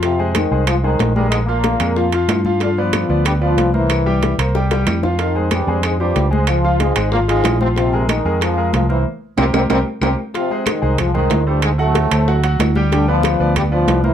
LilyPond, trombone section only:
\new Staff \with { instrumentName = "Trombone section" } { \clef bass \time 4/4 \key f \minor \tempo 4 = 186 <c c'>4 <ees ees'>4 <f f'>8 <ees ees'>4 <g, g>8 | <aes, aes>8 <bes, bes>2 r4. | <d d'>8 <f f'>4. <g, g>8 <f f'>4 <e e'>8~ | <e e'>4. r2 r8 |
<ees ees'>4 <g, g>4 <aes, aes>8 <g, g>4 <aes, aes>8 | <f f'>4 <aes, aes>4 <bes, bes>8 <aes, aes>4 <c c'>8 | <c c'>4 <ees ees'>4 <f f'>4 <f f'>8 <e e'>8 | r4 <g bes c'>8 <g bes c'>8 <g bes c'>8 r8 <g bes c'>8 r8 |
<c c'>4 <ees ees'>4 <f f'>8 <ees ees'>4 <g, g>8 | <aes, aes>8 <a, a>2 r4. | <d d'>8 <f f'>4. <g, g>8 <f f'>4 <e e'>8 | }